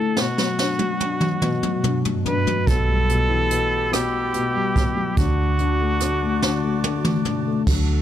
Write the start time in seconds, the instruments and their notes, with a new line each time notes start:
Already playing: felt piano D3 A3 E4, flugelhorn A4
0.17 felt piano B2, flugelhorn F#4, snare
0.38 felt piano F#3, snare
0.59 felt piano D4, snare
0.79 felt piano F#3, high tom
1.00 felt piano D4, high tom
1.21 felt piano F#3, mid tom
1.42 felt piano B2, mid tom
1.63 felt piano F#3, mid tom
1.84 felt piano D4, mid tom
2.05 felt piano F#3, floor tom
2.26 felt piano D4, flugelhorn B4, floor tom
2.47 felt piano F#3, floor tom
2.66 fingered electric bass B1, felt piano B2, flute section G4 F#5 B5 E6, flugelhorn A4, kick, closed hi-hat
2.89 felt piano G3
3.09 felt piano B2, closed hi-hat
3.29 felt piano E3
3.51 felt piano B2, closed hi-hat
3.92 felt piano B2, flugelhorn G4, cross-stick, closed hi-hat
4.34 felt piano B2, closed hi-hat
4.56 felt piano G3
4.76 felt piano B2, kick, closed hi-hat
4.96 felt piano F#3
5.17 fingered electric bass D2, felt piano D3, flugelhorn F#4, flute section F#4 D5 A5 D6, kick, closed hi-hat
5.38 felt piano A3
5.59 felt piano D3, closed hi-hat
5.81 felt piano A3
6.00 felt piano D3, cross-stick, closed hi-hat
6.22 felt piano A3
6.42 felt piano D3, snare
6.64 felt piano A3
6.84 felt piano D3, high tom
7.05 felt piano A3, mid tom
7.25 felt piano D3, mid tom
7.48 felt piano A3
7.67 fingered electric bass D2, felt piano D3 F#3 A3, flute section D4 F#4 A4 F#5 A5, kick, crash